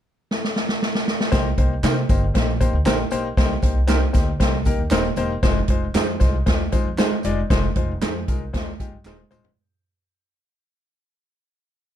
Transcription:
0.31 snare
0.44 snare
0.56 snare
0.69 snare
0.82 snare
0.95 snare
1.08 snare
1.21 snare
1.32 C2 A#3 D#4 G4 C5, kick, snare, closed hi-hat, tambourine
1.58 C2 A#3 D#4 G4 C5, kick, closed hi-hat
1.83 C3 A#3 D#4 G4 A#4 C5, snare, clap, closed hi-hat, tambourine
2.09 G1 A#3 D#4 G4 C5, kick, closed hi-hat, tambourine
2.34 A#1 A#3 D#4 G4 C5, kick, snare, closed hi-hat, tambourine
2.60 A#3 D#4 G4 C5, kick, closed hi-hat, tambourine
2.73 D2
2.85 A#1 A#3 D#4 G4 A#4 C5, snare, clap, closed hi-hat, tambourine
3.11 B1 A#3 D#4 G4 C5, closed hi-hat, tambourine
3.37 C2 A#3 D#4 G4 C5, kick, snare, closed hi-hat, tambourine
3.62 C2 A#3 D#4 G4 C5, kick, closed hi-hat, tambourine
3.87 A#3 D#4 G4 A#4 C5, snare, clap, closed hi-hat, tambourine
4.13 D2 A#3 D#4 G4 C5, kick, snare, closed hi-hat, tambourine
4.40 C2 A#3 D#4 G4 C5, kick, snare, closed hi-hat, tambourine
4.65 A#3 D#4 G4 A#4, kick, closed hi-hat, tambourine
4.79 D#2
4.91 D#1 A#3 D#4 G4 A#4 C5, snare, clap, closed hi-hat, tambourine
5.16 E1 A#3 D#4 G4 C5, closed hi-hat, tambourine
5.43 F1 G#3 D#4 F4 C5, kick, snare, closed hi-hat, tambourine, muted conga
5.68 F1 G#3 D#4 F4 C5, kick, closed hi-hat, muted conga
5.94 F2 G#3 D#4 F4 G#4 C5, snare, clap, closed hi-hat, tambourine, high conga
6.20 C2 G#3 D#4 F4 C5, kick, snare, closed hi-hat, tambourine, muted conga
6.46 D#2 G#3 D#4 F4 C5, kick, snare, closed hi-hat, tambourine, muted conga
6.72 G#3 D#4 F4 C5, kick, closed hi-hat, tambourine, low conga
6.85 F2
6.98 G#3 D#4 F4 G#4 C5, snare, clap, closed hi-hat, tambourine, high conga
7.11 muted upright bass stroke, high conga
7.23 F1 G#3 D#4 F4 D5, closed hi-hat, tambourine
7.50 F1 G#3 D#4 F4 C5, kick, snare, closed hi-hat, tambourine, muted conga
7.76 F1 G#3 D#4 F4 C5, kick, closed hi-hat, muted conga
8.02 F2 G#3 D#4 F4 G#4 C5, snare, clap, closed hi-hat, tambourine, high conga
8.27 C2 G#3 D#4 F4 A#4, kick, closed hi-hat, tambourine, muted conga
8.53 D#2 G#3 D#4 F4 C5, kick, snare, closed hi-hat, tambourine, muted conga
8.79 G#3 D#4 F4 G4, kick, closed hi-hat, tambourine, low conga
8.92 G2
9.05 D#1 G#3 D#4 F4 G#4 C5, snare, clap, tambourine, high conga
9.18 high conga
9.31 E1 G#3 D#4 F4 C5, mid tom, tambourine
9.44 floor tom

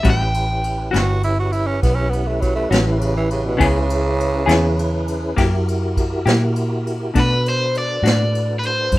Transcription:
0.03 A1 A2 G3 C#4 E4 F#4 G4 B4, kick, ride
0.10 G5
0.34 ride
0.64 ride
0.91 G1 A2 G3 C#4 F#4, ride
0.96 F#4, snare
1.23 E4, ride
1.40 F#4
1.52 E4, ride
1.66 C#4
1.83 B1 B3, kick, snare, ride
1.95 C#4
2.10 B3, ride
2.27 A3
2.41 F#3, kick, ride
2.56 A3
2.69 A1 A2 F#3 G3 C#4 F#4, ride
2.74 snare
2.86 E3
2.99 C#3, ride
3.17 E3
3.31 C#3, ride
3.46 B2
3.57 C#2 C#3 B3 C#4 E4 G#4 B4, kick, ride
3.90 ride
4.20 ride
4.46 E2 C#3 B3 E4 G#4, ride
4.51 snare
4.79 ride
5.08 ride
5.36 F#2 F#3 A#3 E4 G4, kick, snare, ride
5.41 F#4 G4 A#4
5.68 ride
5.97 kick, ride
6.26 A#2 F#3 A#3 E4 G4, snare, ride
6.56 ride
6.87 ride
7.14 B2 A3 D4 F#4 A4 B4, kick, ride
7.19 B4
7.46 C5, ride
7.75 D5, ride
8.03 A2 B2 A3 D4 F#4, ride
8.07 snare
8.35 ride
8.59 B4, ride
8.67 C5
8.92 F#2, kick, ride

